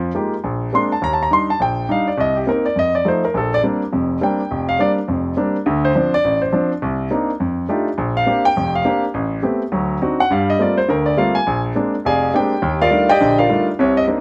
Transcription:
Already playing: F2 F3
0.15 G#3 A#3 D#4 F4 G4
0.44 A#1
0.73 G#3 A#3 C4 D4 C6
0.92 A5
1.02 D#2 A#5
1.13 A5
1.23 A#5
1.31 G3 D4 D#4 C6
1.50 A5
1.60 A#1 G5
1.89 G3 D4 D#4 F5
2.08 D5
2.18 C2 D#5
2.36 G4
2.47 A#3 C4 D#4 A#4
2.66 D5
2.76 F2 D#5
2.95 D5
3.05 F3 A3 D#4 C5
3.25 A#4
3.34 A#1 A4
3.54 D5
3.63 G3 A#3 C4 D4
3.92 F1 F2
4.21 G3 A#3 C4 D4 G5
4.51 F1
4.69 F5
4.79 G3 A#3 C4 D4 D5
5.08 F1 F2
5.37 G3 A#3 C4 D4
5.66 D2 D3
5.85 C5
5.95 F3 C4 D4
6.14 D5
6.24 A1
6.42 C5
6.53 F3 C4 D4
6.82 C2
7.11 A#3 C4 D4 D#4
7.40 F2
7.69 A3 D4 D#4 F4 G4
7.98 A#1
8.17 F5
8.26 A#3 C4 D4 G4
8.45 G5
8.56 F1 F2
8.75 F5
8.85 A#3 C4 D4 G4
9.14 A1
9.43 A3 B3 C4 G4
9.72 D2 F#3
10.02 C4 D4 D#4 F#4
10.20 F#5
10.31 G2 G3 F5
10.50 D#5
10.59 G3 A3 A#3 C4 F4 D5
10.78 C5
10.88 D2 D3 A#4
11.06 D5
11.17 G3 A3 A#3 C4 F4 F5
11.35 G#5
11.47 A#1
11.75 G#3 A#3 C4 D4
12.05 F1 G#4 D5 F5 G#5
12.34 G#3 A#3 C4 D4 G4 G5
12.62 D#2
12.82 F4 A#4 D5 F5
12.91 G3 A3 D4 D#4 F4
13.09 G4 D5 D#5 G5
13.21 A#1 D3
13.38 F4 A#4 D5 F5
13.49 G3 A3 D4 D#4 F4
13.79 C2 C3 C#5
13.97 D#5
14.08 A#3 C4 D4 D#4

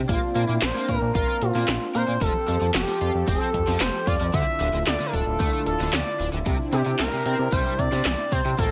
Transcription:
Already playing: C4 D4
0.09 A#1 A#3 F4, kick, closed hi-hat
0.35 A#2 A#3, closed hi-hat
0.45 A#2 A#3 E4
0.62 A#1 C5, snare, clap, closed hi-hat
0.75 A#3
0.89 A#2 A#4, kick, closed hi-hat
1.02 A#2
1.15 A#1 F4 A#4, kick, closed hi-hat
1.28 F4
1.42 A#2 F4, closed hi-hat
1.55 A#2 A#3, snare
1.68 A#1 D4, snare, clap, closed hi-hat
1.95 A#2 A#4 C5, open hi-hat
2.08 A#2 A#3
2.21 F1 F3 G4 A4, kick, closed hi-hat
2.48 F2 F3, closed hi-hat
2.61 F2 F3
2.74 F1 G4, snare, clap, closed hi-hat
2.88 F3
3.01 F2 F4, closed hi-hat
3.15 F2
3.27 F1 C4 A4, kick, closed hi-hat
3.41 C4
3.54 F2, kick, closed hi-hat
3.67 F2 F3, snare
3.80 F1 A3 C5, snare, clap, closed hi-hat
4.07 F2 F4 D5, kick, open hi-hat
4.21 F2 F3
4.33 D2 D3 D4 E4 F4 E5, kick, closed hi-hat
4.60 D1 D3, closed hi-hat
4.73 D1 D3
4.87 D2 D5, snare, clap, closed hi-hat
5.00 D3
5.06 A#4
5.13 D1 D4 A4, kick, closed hi-hat
5.27 D1
5.40 D2 A3, kick, closed hi-hat
5.53 A3
5.66 D1 A4, closed hi-hat
5.80 D1 D3, snare
5.93 D2 F3 D5, snare, clap, closed hi-hat
6.19 D1 D4, open hi-hat
6.33 D1 D3
6.46 C2 C3 C4 D4, kick, closed hi-hat
6.73 C3 G4, closed hi-hat
6.86 C3
6.99 C2 A#4, snare, clap, closed hi-hat
7.12 C3
7.26 C3 C4, closed hi-hat
7.39 C3
7.52 C2 G3 C5, kick, closed hi-hat
7.65 G3
7.78 C3 D5, kick, closed hi-hat
7.92 C3, snare
8.05 C2 E3, snare, clap, closed hi-hat
8.32 C3 C4 C5, kick, open hi-hat
8.45 C3
8.58 A#1 A#3 D4 A4, kick, closed hi-hat

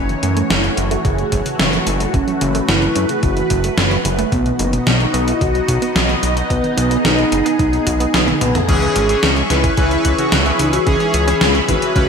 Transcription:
Already playing: F#1 E3 A3 C#4 F#4 C#5
0.09 E3, closed hi-hat
0.23 F#2 A3, closed hi-hat
0.36 A3, closed hi-hat
0.50 F#1 E3 E4, snare, closed hi-hat
0.64 F#3, closed hi-hat
0.77 F#1 C#3, closed hi-hat
0.91 A3 F#4, closed hi-hat
1.05 F#1 F#3 G#4, kick, closed hi-hat
1.18 C#3, closed hi-hat
1.32 F#1 C#4, kick, closed hi-hat
1.45 C#3, closed hi-hat
1.59 F#1 C#3, snare, closed hi-hat
1.73 E3, closed hi-hat
1.86 F#1 A3, closed hi-hat
2.00 A3, closed hi-hat
2.14 F#1 E3 C#4 B4, kick, closed hi-hat
2.27 F#3, closed hi-hat
2.41 F#1 C#3, closed hi-hat
2.55 A3, closed hi-hat
2.68 F#1 F#3 E4, snare, closed hi-hat
2.82 C#3, closed hi-hat
2.96 F#2 C#4, closed hi-hat
3.09 C#3 G#4, closed hi-hat
3.23 F#1 C#3 F#4, kick, closed hi-hat
3.37 E3, closed hi-hat
3.50 F#1 A3, kick, closed hi-hat
3.64 A3, closed hi-hat
3.78 F#1 E3, snare, closed hi-hat
3.91 F#3, closed hi-hat
4.05 F#1 C#3, closed hi-hat
4.18 A3, closed hi-hat
4.32 B1 F#3 B3 D#4 F#4 D#5, kick, closed hi-hat
4.46 B2, closed hi-hat
4.59 F#1 D#4, closed hi-hat
4.73 B2, closed hi-hat
4.87 B1 B2 D#4, snare, closed hi-hat
5.00 D#3, closed hi-hat
5.14 B1 B3, closed hi-hat
5.28 B3 E4, closed hi-hat
5.41 B1 D#3 F#4, kick, closed hi-hat
5.55 F#3, closed hi-hat
5.68 B1 B2, kick, closed hi-hat
5.82 B3, closed hi-hat
5.96 B1 F#3, snare, closed hi-hat
6.09 B2, closed hi-hat
6.23 B1 D#4, closed hi-hat
6.36 B2, closed hi-hat
6.50 B1 B2 B3 G#4, kick, closed hi-hat
6.64 D#3, closed hi-hat
6.77 B1 B3, closed hi-hat
6.91 B3, closed hi-hat
7.05 B1 D#3 D#4, snare, closed hi-hat
7.18 F#3, closed hi-hat
7.32 F#1 B2, closed hi-hat
7.45 B3, closed hi-hat
7.59 B1 F#3 D#4, kick, closed hi-hat
7.73 B2, closed hi-hat
7.87 B1 F#4, kick, closed hi-hat
8.00 B3, closed hi-hat
8.14 B1 D#4, snare, closed hi-hat, high tom
8.27 B3, closed hi-hat, high tom
8.41 B1 B3 B4, closed hi-hat, mid tom
8.55 B3 A4, closed hi-hat, mid tom
8.68 C#2 C#3 E3 C#4 G#4 C#5 E5 C#6, kick, closed hi-hat, crash
8.82 E3, closed hi-hat
8.96 G#1 C#4, closed hi-hat
9.09 E3 C#4 G#4, closed hi-hat
9.23 C#2 E3, snare, closed hi-hat
9.36 G#3, closed hi-hat
9.50 C#2 C#3 E3 C#4 E4 B4, snare, closed hi-hat
9.64 C#4, kick, closed hi-hat
9.77 C#2 E3 G#3 C#4 B4, kick, closed hi-hat
9.91 C#3, closed hi-hat
10.05 C#2 E4, kick, closed hi-hat
10.18 C#3 E3 C#4 F#4, closed hi-hat
10.32 C#2 C#3, snare, closed hi-hat
10.46 E3 C#4 B4, closed hi-hat
10.59 C#2 C#4 D#4, closed hi-hat
10.73 C#4 F#4, closed hi-hat
10.86 C#2 E3 C#4 G#4 B5, kick, closed hi-hat
11.00 G#3, closed hi-hat
11.14 C#2 C#3, closed hi-hat
11.27 E3 C#4 G#4, closed hi-hat
11.41 C#2 G#3, snare, closed hi-hat
11.55 C#3, closed hi-hat
11.68 G#1 E3 C#4 E4 F#4 B4, kick, closed hi-hat
11.82 C#3, closed hi-hat
11.96 C#2 C#3 E3 C#4 B4, kick, closed hi-hat

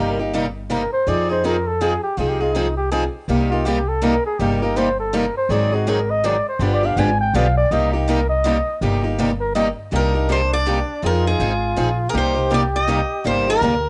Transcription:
Already playing: G1 C3 G3 A#3 D#4 G4 A#4
0.19 A#3 D#4 G4
0.33 C3 G3 A#3 D#4 G4
0.70 C3 G3 A#3 D#4 G4 A#4
0.93 C5
1.07 F2 F3 C4 D#4 G#4 D5
1.29 C4 D#4 G#4 C5
1.44 F3 C4 D#4 G#4 A#4
1.67 A4
1.81 F3 C4 D#4 G#4
2.03 G4
2.17 C2 F3 C4 D#4 F4 G#4
2.29 G4
2.41 C4 D#4 F4 G#4
2.54 F3 C4 D#4 G#4
2.77 G4
2.92 F3 C4 D#4 G#4
3.28 C2 C3 G3 A#3 D#4 G4
3.50 A#3 D#4 F4 G4
3.66 C3 G3 A#3 D#4 G4
3.88 A4
4.02 C3 G3 A#3 D#4 G4 A#4
4.26 G#4
4.39 G1 C3 G3 A#3 D#4 G4
4.62 A#3 D#4 G4 A#4
4.77 C3 G3 A#3 D#4 G4 C5
5.00 A4
5.13 C3 G3 A#3 D#4 G4 A#4
5.37 C5
5.49 G#1 D#3 F#3 C4 D#4 G#4 D5
5.72 C4 D#4 F#4 G#4
5.87 D#3 F#3 C4 D#4 G#4 A#4
6.11 D#5
6.24 D#3 F#3 C4 D#4 G#4 D5
6.49 C5
6.59 G1 D3 F3 B3 D4 G4 B4
6.74 D5
6.83 B3 D4 G4 F5
6.96 G#1 D3 F3 B3 D4 G4 G#5
7.21 G5
7.34 B1 D3 F3 B3 D4 G4 F5
7.58 D5
7.71 C2 C3 G3 A#3 D#4 G4 D#5
7.93 A#3 D#4 G4
8.08 C3 G3 A#3 D#4 G4 A#4
8.29 D#5
8.45 C3 G3 A#3 D#4 G4
8.81 G1 C3 G3 A#3 D#4 G4
9.03 A#3 D#4 G4
9.18 C3 G3 A#3 D#4 G4
9.40 A#4
9.55 C3 G3 A#3 D#4 G4 D#5
9.92 C2 C3 G3 A#3 D4 D#4 G4 A#4
10.15 A#3 D#4 G4
10.29 C3 G3 A#3 D#4 G4 C5
10.54 D5
10.67 C3 G3 A#3 D#4 G4
11.03 F2 F3 C4 D#4 F4 G#4 A#4
11.26 C4 D#4 G#4
11.40 G#1 F3 C4 D#4 G#4
11.76 A#1 F3 C4 D#4 G#4
12.09 C3 G#4 A#4
12.14 C2 G3 A#3 D#4 G4 C5
12.35 A#3 D#4 G4
12.50 C3 G3 A#3 D#4 G4
12.54 D5
12.76 D#5
12.87 C3 G3 A#3 D#4 G4
13.25 G1 C3 G3 A#3 D#4 G4 C5
13.47 A#3 D#4 G4 A#4
13.61 D2 C3 G3 A#3 D#4 G4

